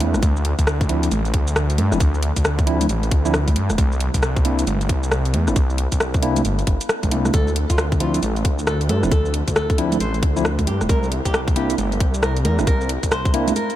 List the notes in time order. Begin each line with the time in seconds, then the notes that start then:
0.00 E2 A#3 C4 D4 E4, closed hi-hat
0.14 G1, cross-stick, high conga, shaker
0.23 D2, kick, closed hi-hat, shaker
0.36 shaker
0.45 closed hi-hat
0.59 D2, kick, closed hi-hat, shaker
0.67 cross-stick, shaker
0.81 kick, closed hi-hat, shaker
0.89 F3 C4 D4 E4, closed hi-hat
1.03 closed hi-hat, shaker
1.11 A1, closed hi-hat, high conga, shaker
1.25 closed hi-hat, shaker
1.34 D2, kick, closed hi-hat
1.48 shaker
1.56 cross-stick, shaker
1.70 closed hi-hat, shaker
1.78 G2, closed hi-hat, high conga
1.92 D1 F3 C4 D4 E4, cross-stick, shaker
2.00 D2, kick, closed hi-hat, shaker
2.14 shaker
2.23 closed hi-hat
2.36 D2, kick, closed hi-hat, shaker
2.45 cross-stick, shaker
2.59 kick, closed hi-hat, shaker
2.67 F3 C4 D4 E4, closed hi-hat
2.81 closed hi-hat, high conga, shaker
2.89 A1, closed hi-hat, shaker
3.03 closed hi-hat, shaker
3.11 D2, kick, closed hi-hat
3.25 F3 C4 D4 E4, shaker
3.34 cross-stick, shaker
3.48 kick, closed hi-hat, high conga, shaker
3.56 G2, closed hi-hat
3.70 D1, cross-stick, high conga, shaker
3.78 C2, kick, closed hi-hat, shaker
3.92 shaker
4.00 closed hi-hat
4.14 C2, kick, closed hi-hat, shaker
4.23 cross-stick, shaker
4.37 kick, closed hi-hat, shaker
4.45 A#3 C4 D4 E4, closed hi-hat
4.59 closed hi-hat, shaker
4.67 G1, closed hi-hat, high conga, shaker
4.81 closed hi-hat, shaker
4.89 C2, kick, closed hi-hat
5.03 shaker
5.12 cross-stick, shaker
5.25 closed hi-hat, shaker
5.34 E2, closed hi-hat, high conga
5.48 G1 A#3 C4 D4 E4, cross-stick, shaker
5.56 C2, kick, closed hi-hat, shaker
5.70 shaker
5.78 closed hi-hat
5.92 C2, kick, closed hi-hat, shaker
6.00 cross-stick, shaker
6.14 kick, closed hi-hat, shaker
6.23 A#3 C4 D4 E4, closed hi-hat
6.36 closed hi-hat, high conga, shaker
6.45 G1, closed hi-hat, shaker
6.59 closed hi-hat, shaker
6.67 G1, kick, closed hi-hat
6.81 closed hi-hat, shaker
6.89 cross-stick, shaker
7.03 A#1, kick, closed hi-hat, high conga, shaker
7.11 C2 A#3 C4 D4 E4, closed hi-hat
7.25 cross-stick, high conga, shaker
7.34 D2 A4, kick, closed hi-hat, shaker
7.48 shaker
7.56 closed hi-hat
7.70 D2 F4, kick, closed hi-hat, shaker
7.78 cross-stick, shaker
7.92 kick, closed hi-hat, shaker
8.00 F3 C4 D4 E4 F4, closed hi-hat
8.14 closed hi-hat, shaker
8.23 A1, closed hi-hat, high conga, shaker
8.36 closed hi-hat, shaker
8.45 D2, kick, closed hi-hat
8.59 shaker
8.67 A4, cross-stick, shaker
8.81 closed hi-hat, shaker
8.89 G2 A4, closed hi-hat, high conga
9.03 D1 F3 C4 D4 E4, cross-stick, shaker
9.11 D2 A4, kick, closed hi-hat, shaker
9.26 shaker
9.34 closed hi-hat
9.48 D2, kick, closed hi-hat, shaker
9.56 A4, cross-stick, shaker
9.70 kick, closed hi-hat, shaker
9.78 F3 C4 D4 E4, closed hi-hat
9.92 closed hi-hat, high conga, shaker
10.00 A1 C5, closed hi-hat, shaker
10.14 closed hi-hat, shaker
10.23 D2, kick, closed hi-hat
10.36 F3 C4 D4 E4, shaker
10.45 cross-stick, shaker
10.59 kick, closed hi-hat, high conga, shaker
10.67 G2 G4, closed hi-hat
10.81 D1, cross-stick, high conga, shaker
10.89 C2 A#4, kick, closed hi-hat, shaker
11.03 shaker
11.12 closed hi-hat
11.25 C2 G4, kick, closed hi-hat, shaker
11.34 cross-stick, shaker
11.48 kick, closed hi-hat, shaker
11.56 A#3 C4 D4 E4 G4, closed hi-hat
11.70 closed hi-hat, shaker
11.78 G1, closed hi-hat, high conga, shaker
11.92 closed hi-hat, shaker
12.00 C2, kick, closed hi-hat
12.14 shaker
12.23 A#4, cross-stick, shaker
12.37 closed hi-hat, shaker
12.45 E2 A#4, closed hi-hat, high conga
12.59 G1 A#3 C4 D4 E4, cross-stick, shaker
12.67 C2 A#4, kick, closed hi-hat, shaker
12.81 shaker
12.89 closed hi-hat
13.03 C2, kick, closed hi-hat, shaker
13.12 C5, cross-stick, shaker
13.25 kick, closed hi-hat, shaker
13.34 A#3 C4 D4 E4, closed hi-hat
13.48 closed hi-hat, high conga, shaker
13.56 A#4, closed hi-hat, shaker
13.70 closed hi-hat, shaker